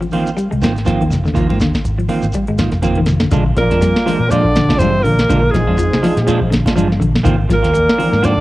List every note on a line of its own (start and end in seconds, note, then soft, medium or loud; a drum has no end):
0.01 0.20 F3 medium
0.01 muted clean electric guitar stroke soft
0.01 closed hi-hat soft
0.01 high conga medium
0.11 0.29 D#3 medium
0.11 0.29 A#3 medium
0.11 0.29 C4 medium
0.11 0.29 F4 medium
0.11 open hi-hat medium
0.11 high conga medium
0.11 shekere soft
0.26 closed hi-hat soft
0.26 shekere medium
0.37 0.48 G3 medium
0.37 muted clean electric guitar stroke soft
0.37 closed hi-hat medium
0.37 shekere medium
0.51 0.62 C2 medium
0.51 0.70 G#3 medium
0.51 muted clean electric guitar stroke soft
0.51 closed hi-hat soft
0.62 0.96 G#1 medium
0.62 0.76 D#3 medium
0.62 0.75 A#3 medium
0.62 0.75 C4 medium
0.62 0.74 F4 medium
0.62 snare medium
0.62 closed hi-hat soft
0.62 high conga medium
0.62 shekere medium
0.75 muted clean electric guitar stroke soft
0.75 snare soft
0.75 closed hi-hat soft
0.75 shekere soft
0.85 1.02 D#3 medium
0.85 0.97 F3 medium
0.85 1.03 A#3 medium
0.85 1.03 C4 medium
0.85 1.03 F4 medium
0.85 kick medium
0.85 snare soft
0.85 closed hi-hat medium
0.85 shekere medium
1.01 1.11 D#2 medium
1.01 1.20 D#3 medium
1.01 closed hi-hat soft
1.01 high conga medium
1.10 1.24 F1 medium
1.10 muted clean electric guitar stroke soft
1.10 snare soft
1.10 closed hi-hat soft
1.10 high conga medium
1.10 low conga medium
1.10 shekere medium
1.24 1.47 D#2 medium
1.24 1.34 D3 medium
1.24 muted clean electric guitar stroke soft
1.24 snare soft
1.24 shekere soft
1.34 1.49 D#3 medium
1.34 1.56 F3 medium
1.34 1.49 A#3 medium
1.34 1.48 F4 medium
1.34 muted clean electric guitar stroke medium
1.34 kick loud
1.34 closed hi-hat medium
1.34 low conga medium
1.34 shekere medium
1.49 1.60 G#2 medium
1.49 1.60 A#3 soft
1.49 1.60 C4 medium
1.49 1.60 F4 medium
1.49 high conga medium
1.60 1.73 D#2 medium
1.60 1.79 D3 medium
1.60 muted clean electric guitar stroke soft
1.60 snare medium
1.60 closed hi-hat soft
1.60 shekere medium
1.74 muted fingered electric bass stroke soft
1.74 kick medium
1.74 snare medium
1.74 shekere soft
1.85 2.06 G#1 medium
1.85 muted clean electric guitar stroke soft
1.85 closed hi-hat medium
1.85 shekere medium
1.98 2.17 F3 medium
1.98 muted clean electric guitar stroke soft
1.98 closed hi-hat soft
2.09 2.25 D#3 medium
2.09 2.25 A#3 medium
2.09 2.25 C4 medium
2.09 2.25 F4 medium
2.09 open hi-hat medium
2.09 high conga medium
2.09 shekere soft
2.22 2.33 G#1 medium
2.22 closed hi-hat soft
2.22 shekere medium
2.33 2.45 G3 medium
2.33 muted clean electric guitar stroke soft
2.33 kick medium
2.33 closed hi-hat medium
2.33 shekere medium
2.47 2.70 G#1 medium
2.47 2.67 G#3 medium
2.47 muted clean electric guitar stroke soft
2.47 closed hi-hat soft
2.58 2.72 D#3 medium
2.58 2.72 A#3 medium
2.58 2.71 F4 medium
2.58 kick medium
2.58 snare medium
2.58 closed hi-hat soft
2.58 high conga loud
2.58 shekere medium
2.72 3.25 F1 medium
2.72 muted clean electric guitar stroke soft
2.72 snare soft
2.72 closed hi-hat soft
2.72 shekere soft
2.82 2.99 D#3 medium
2.82 2.94 F3 medium
2.82 2.99 A#3 medium
2.82 2.99 C4 medium
2.82 2.99 F4 medium
2.82 kick medium
2.82 closed hi-hat medium
2.82 shekere medium
2.95 3.16 D#3 medium
2.95 closed hi-hat soft
2.95 high conga medium
3.06 muted clean electric guitar stroke soft
3.06 snare soft
3.06 closed hi-hat soft
3.06 high conga medium
3.06 low conga medium
3.06 shekere medium
3.20 3.30 D3 medium
3.20 muted clean electric guitar stroke soft
3.20 snare medium
3.20 shekere soft
3.31 3.53 A#1 medium
3.31 3.51 D3 medium
3.31 3.45 G#3 medium
3.31 3.45 D4 medium
3.31 3.45 F4 medium
3.31 muted clean electric guitar stroke medium
3.31 kick loud
3.31 closed hi-hat medium
3.31 low conga medium
3.31 shekere medium
3.46 muted clean electric guitar stroke soft
3.56 3.69 A#1 medium
3.56 4.27 A#2 medium
3.56 3.75 F3 medium
3.56 4.30 A#3 medium
3.56 4.32 A#4 loud
3.56 muted clean electric guitar stroke soft
3.56 kick medium
3.56 snare soft
3.56 closed hi-hat medium
3.56 high conga loud
3.56 shekere soft
3.70 3.92 F2 loud
3.70 3.81 G#3 soft
3.70 3.81 D4 soft
3.70 3.81 F4 medium
3.70 snare soft
3.70 closed hi-hat medium
3.81 4.00 G3 medium
3.81 muted clean electric guitar stroke soft
3.81 snare soft
3.81 closed hi-hat medium
3.81 shekere medium
3.96 snare medium
4.06 4.20 F3 medium
4.06 4.25 F3 medium
4.06 4.20 G#3 medium
4.06 4.20 D4 medium
4.06 4.19 F4 medium
4.06 snare soft
4.06 open hi-hat medium
4.06 high conga medium
4.06 shekere soft
4.20 4.41 A#2 medium
4.20 muted clean electric guitar stroke soft
4.29 4.79 D3 medium
4.29 4.45 F3 medium
4.29 4.50 F3 medium
4.29 4.45 G#3 medium
4.29 4.80 D4 medium
4.29 4.44 F4 medium
4.29 4.80 D5 loud
4.29 muted clean electric guitar stroke medium
4.29 closed hi-hat medium
4.29 shekere medium
4.44 4.66 A#1 medium
4.44 muted clean electric guitar stroke soft
4.44 kick medium
4.55 4.74 D3 medium
4.55 muted clean electric guitar stroke soft
4.55 snare medium
4.55 closed hi-hat soft
4.55 high conga loud
4.55 shekere soft
4.69 4.79 G#3 soft
4.69 4.80 D4 medium
4.69 4.80 F4 medium
4.69 kick medium
4.69 snare medium
4.69 low conga medium
4.78 5.01 G2 medium
4.78 5.03 C3 medium
4.78 4.94 F3 medium
4.78 4.99 F3 medium
4.78 4.94 G#3 medium
4.78 5.06 C4 medium
4.78 4.94 D4 medium
4.78 5.05 C5 loud
4.78 closed hi-hat medium
4.78 shekere medium
4.82 4.93 F4 medium
4.82 high conga medium
4.95 muted clean electric guitar stroke soft
5.01 5.26 A#1 medium
5.01 5.52 A#2 medium
5.01 5.23 D3 medium
5.01 5.56 A#3 medium
5.01 5.52 A#4 loud
5.01 shekere soft
5.05 muted clean electric guitar stroke soft
5.05 open hi-hat medium
5.05 high conga medium
5.19 snare medium
5.19 closed hi-hat soft
5.29 5.51 A#1 loud
5.29 5.48 D3 loud
5.29 5.43 F3 medium
5.29 5.42 G#3 medium
5.29 5.42 D4 medium
5.29 5.42 F4 medium
5.29 kick loud
5.29 closed hi-hat medium
5.29 low conga medium
5.29 shekere medium
5.43 muted clean electric guitar stroke soft
5.51 5.66 A#1 medium
5.51 6.51 G#2 medium
5.51 5.72 F3 medium
5.51 6.50 G#4 medium
5.51 muted clean electric guitar stroke soft
5.51 kick medium
5.51 closed hi-hat medium
5.51 shekere soft
5.55 6.52 G#3 medium
5.55 snare soft
5.55 high conga loud
5.67 5.89 F2 loud
5.67 5.77 G#3 soft
5.67 5.78 D4 soft
5.67 5.78 F4 medium
5.78 5.97 F3 medium
5.78 muted clean electric guitar stroke soft
5.78 closed hi-hat medium
5.78 shekere medium
5.93 snare medium
5.93 low conga medium
6.02 6.16 F3 medium
6.02 6.21 F3 medium
6.02 6.16 D4 medium
6.02 6.16 F4 medium
6.02 snare soft
6.02 open hi-hat medium
6.02 high conga medium
6.02 shekere soft
6.17 6.38 A#2 loud
6.17 muted clean electric guitar stroke medium
6.17 snare soft
6.17 closed hi-hat medium
6.27 6.41 F3 medium
6.27 6.46 F3 medium
6.27 6.41 G#3 loud
6.27 6.41 D4 loud
6.27 6.41 F4 loud
6.27 closed hi-hat medium
6.27 shekere medium
6.41 6.63 A#1 medium
6.41 kick medium
6.50 6.69 D3 medium
6.50 muted clean electric guitar stroke soft
6.50 snare medium
6.50 closed hi-hat medium
6.50 high conga loud
6.50 shekere soft
6.66 6.75 G#3 medium
6.66 6.75 D4 medium
6.66 6.76 F4 medium
6.66 kick medium
6.66 snare medium
6.66 closed hi-hat medium
6.66 low conga medium
6.76 6.99 G2 medium
6.76 6.94 F3 medium
6.76 6.90 F3 medium
6.76 6.90 G#3 medium
6.76 6.89 D4 medium
6.76 6.89 F4 medium
6.76 closed hi-hat medium
6.76 high conga medium
6.76 shekere medium
6.90 muted clean electric guitar stroke medium
6.90 snare soft
7.00 7.22 A#1 loud
7.00 7.19 D3 medium
7.00 muted clean electric guitar stroke medium
7.00 kick medium
7.00 closed hi-hat medium
7.00 high conga medium
7.00 shekere soft
7.15 snare medium
7.23 7.46 G#1 loud
7.23 7.38 D#3 medium
7.23 7.44 D#3 loud
7.23 7.37 A#3 medium
7.23 7.37 C4 medium
7.23 7.37 F4 loud
7.23 kick loud
7.23 closed hi-hat medium
7.23 shekere medium
7.28 low conga medium
7.38 muted clean electric guitar stroke soft
7.49 7.62 G#1 medium
7.49 7.68 F3 medium
7.49 muted clean electric guitar stroke soft
7.49 kick medium
7.49 snare soft
7.49 closed hi-hat medium
7.49 high conga loud
7.49 shekere soft
7.53 8.21 A#2 medium
7.53 8.28 A#3 medium
7.53 8.27 A#4 loud
7.63 7.85 D#2 loud
7.63 7.72 A#3 soft
7.63 7.72 C4 soft
7.63 7.72 F4 medium
7.63 snare soft
7.63 closed hi-hat medium
7.73 muted clean electric guitar stroke soft
7.73 closed hi-hat medium
7.73 high conga medium
7.73 shekere medium
7.89 snare medium
7.98 8.12 D#3 medium
7.98 8.17 F3 medium
7.98 8.12 A#3 medium
7.98 8.12 C4 medium
7.98 8.11 F4 medium
7.98 open hi-hat medium
7.98 high conga medium
7.98 shekere soft
8.13 8.34 G#2 loud
8.13 muted clean electric guitar stroke soft
8.13 snare soft
8.13 high conga medium
8.22 8.40 D3 medium
8.22 8.40 F3 medium
8.22 8.35 A#3 medium
8.22 8.34 C4 medium
8.22 8.34 F4 loud
8.22 8.40 D5 loud
8.22 muted clean electric guitar stroke medium
8.22 closed hi-hat medium
8.22 shekere medium
8.27 8.40 D4 medium
8.35 8.40 G#1 medium
8.35 muted clean electric guitar stroke soft
8.35 kick medium